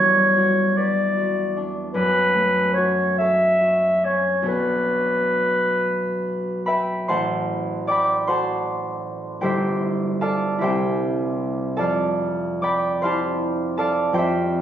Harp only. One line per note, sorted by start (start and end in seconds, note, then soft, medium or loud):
0.00 1.96 E2 soft
0.00 1.97 G3 soft
0.00 0.48 B3 soft
0.00 1.55 D4 soft
0.00 0.84 E4 soft
0.00 0.36 F#4 soft
0.37 1.16 F#4 soft
0.78 1.97 B4 soft
1.17 2.76 F#4 soft
1.56 1.97 D4 soft
1.94 4.49 F#2 soft
2.35 6.25 A3 soft
2.77 3.60 F#4 soft
3.20 4.44 A4 soft
3.61 4.43 F#4 soft
4.05 4.50 C#4 soft
4.42 7.11 B1 soft
4.42 7.11 B3 soft
4.42 7.12 D4 soft
4.42 8.28 F#4 soft
4.42 8.28 A4 soft
6.66 7.13 B4 soft
6.66 9.41 E5 soft
6.66 7.13 G5 soft
6.66 7.12 B5 soft
7.08 9.46 A1 soft
7.08 8.27 C5 soft
7.08 8.27 F#5 soft
7.08 8.28 A5 soft
7.08 8.26 C6 medium
7.87 10.21 D5 soft
7.87 9.40 G5 soft
7.87 11.81 B5 soft
7.87 8.54 D6 medium
8.27 9.46 F#4 soft
8.27 9.41 A4 soft
8.27 9.41 C5 soft
8.27 9.46 F#5 soft
8.27 10.20 A5 soft
8.27 9.45 C6 medium
9.41 10.64 G1 soft
9.41 10.58 E4 soft
9.41 10.61 G4 soft
9.41 10.21 A4 soft
9.41 10.60 C5 soft
9.41 10.60 E5 soft
9.41 10.60 G5 medium
10.21 10.64 A4 soft
10.21 10.64 D5 soft
10.21 10.63 F5 soft
10.21 10.63 A5 medium
10.59 11.82 C2 soft
10.59 13.02 E4 soft
10.59 13.03 G4 soft
10.59 13.01 C5 soft
10.59 14.14 E5 soft
10.63 12.62 G5 medium
11.77 14.12 F2 soft
11.77 13.77 A4 soft
11.77 12.62 D5 soft
11.77 13.02 F5 soft
11.77 13.02 A5 medium
12.62 13.78 D5 soft
12.62 14.13 G5 soft
12.62 14.62 B5 soft
12.62 13.27 D6 medium
13.02 14.18 E4 soft
13.02 14.14 G4 soft
13.02 14.14 C5 soft
13.02 13.77 F5 soft
13.02 13.76 A5 soft
13.02 14.17 C6 medium
13.77 14.62 A4 soft
13.77 14.62 D5 soft
13.77 14.62 F5 soft
13.77 14.62 A5 medium
14.13 14.62 F2 soft
14.13 14.62 G4 soft
14.13 14.62 C5 soft
14.13 14.62 G5 medium
14.18 14.62 E5 soft